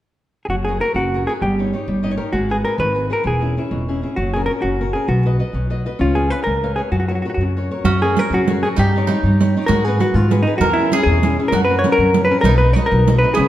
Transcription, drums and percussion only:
7.85 riq
8.17 riq
8.48 riq
8.78 riq
9.08 riq
9.41 riq
9.69 riq
10.00 riq
10.31 riq
10.61 riq
10.78 riq
10.92 riq
11.23 riq
11.52 riq
11.84 riq
12.14 riq
12.44 riq
12.76 riq
13.07 riq
13.37 riq

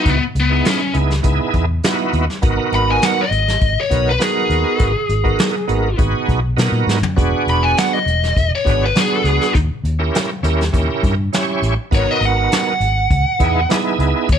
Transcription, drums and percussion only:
0.06 kick, closed hi-hat
0.35 closed hi-hat
0.65 snare, closed hi-hat
0.94 closed hi-hat
1.10 snare
1.24 kick, closed hi-hat
1.54 kick, closed hi-hat
1.83 snare, closed hi-hat
2.13 closed hi-hat
2.30 snare
2.42 kick, closed hi-hat
2.72 closed hi-hat
3.02 snare, closed hi-hat
3.32 closed hi-hat
3.48 snare
3.61 kick, closed hi-hat
3.91 kick, closed hi-hat
4.20 snare, closed hi-hat
4.50 closed hi-hat
4.79 kick, closed hi-hat
5.09 closed hi-hat
5.25 kick
5.39 snare, closed hi-hat
5.69 closed hi-hat
5.99 kick, closed hi-hat
6.29 kick, closed hi-hat
6.58 snare, closed hi-hat
6.89 snare
7.03 floor tom
7.18 kick, closed hi-hat
7.48 closed hi-hat
7.77 snare, closed hi-hat
8.08 closed hi-hat
8.24 snare
8.37 kick, closed hi-hat
8.66 kick, closed hi-hat
8.95 snare, closed hi-hat
9.25 closed hi-hat
9.41 snare
9.55 kick, closed hi-hat
9.85 closed hi-hat
10.15 snare, closed hi-hat
10.44 closed hi-hat
10.61 snare
10.74 kick, closed hi-hat
11.03 kick, closed hi-hat
11.33 snare, closed hi-hat
11.63 closed hi-hat
11.92 kick, closed hi-hat
12.22 closed hi-hat
12.52 snare, closed hi-hat
12.81 closed hi-hat
13.11 kick, closed hi-hat
13.40 kick, closed hi-hat
13.70 snare, closed hi-hat
14.00 closed hi-hat
14.29 kick, closed hi-hat

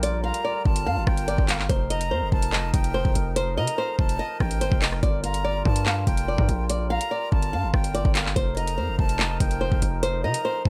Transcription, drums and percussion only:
0.03 closed hi-hat
0.34 closed hi-hat
0.65 kick
0.76 closed hi-hat
1.07 kick, cross-stick
1.17 closed hi-hat
1.28 closed hi-hat
1.38 kick
1.49 clap, closed hi-hat
1.59 clap
1.70 kick, closed hi-hat
1.90 closed hi-hat
2.01 closed hi-hat
2.32 kick
2.42 closed hi-hat
2.53 clap
2.74 kick, closed hi-hat
2.84 closed hi-hat
3.05 kick
3.15 closed hi-hat
3.36 closed hi-hat
3.67 closed hi-hat
3.99 kick
4.09 closed hi-hat
4.40 kick, cross-stick
4.51 closed hi-hat
4.61 closed hi-hat
4.72 kick
4.82 clap, open hi-hat
4.92 cross-stick
5.03 kick, closed hi-hat
5.24 closed hi-hat
5.34 closed hi-hat
5.65 kick
5.76 closed hi-hat
5.86 clap
6.07 kick, closed hi-hat
6.17 closed hi-hat
6.38 kick
6.49 closed hi-hat
6.70 closed hi-hat
7.01 closed hi-hat
7.32 kick
7.42 closed hi-hat
7.74 kick, cross-stick
7.84 closed hi-hat
7.95 closed hi-hat
8.05 kick
8.15 clap, closed hi-hat
8.26 clap
8.36 kick, closed hi-hat
8.57 closed hi-hat
8.67 closed hi-hat
8.99 kick
9.09 closed hi-hat
9.19 clap
9.40 kick, closed hi-hat
9.51 closed hi-hat
9.72 kick
9.82 closed hi-hat
10.03 closed hi-hat
10.34 closed hi-hat
10.65 kick

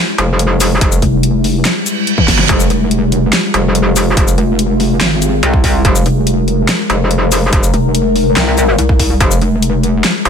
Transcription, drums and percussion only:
0.18 closed hi-hat
0.39 closed hi-hat
0.60 open hi-hat, shaker
0.81 kick, closed hi-hat
0.92 shaker
1.02 kick, closed hi-hat
1.23 closed hi-hat
1.44 open hi-hat
1.65 snare, clap, closed hi-hat
1.86 closed hi-hat, shaker
2.07 closed hi-hat
2.18 kick, high tom
2.28 kick, snare, open hi-hat
2.39 snare
2.49 kick, closed hi-hat
2.60 shaker
2.70 closed hi-hat
2.91 closed hi-hat
3.12 closed hi-hat
3.33 snare, clap, closed hi-hat
3.54 closed hi-hat
3.75 closed hi-hat
3.96 open hi-hat, shaker
4.17 kick, closed hi-hat
4.28 shaker
4.38 closed hi-hat
4.59 closed hi-hat
4.80 open hi-hat
5.01 snare, clap, closed hi-hat
5.22 closed hi-hat, shaker
5.43 closed hi-hat
5.54 kick
5.64 kick, open hi-hat
5.85 kick, closed hi-hat
5.96 shaker
6.06 closed hi-hat
6.27 closed hi-hat
6.48 closed hi-hat
6.69 snare, clap, closed hi-hat
6.90 closed hi-hat
7.11 closed hi-hat
7.32 open hi-hat, shaker
7.53 kick, closed hi-hat
7.63 shaker
7.74 closed hi-hat
7.95 closed hi-hat
8.16 open hi-hat
8.37 snare, clap, closed hi-hat
8.58 closed hi-hat, shaker
8.79 closed hi-hat
8.89 kick
8.99 kick, open hi-hat
9.20 kick, closed hi-hat
9.31 shaker
9.41 closed hi-hat
9.62 closed hi-hat
9.83 closed hi-hat
10.04 snare, clap, closed hi-hat
10.25 closed hi-hat

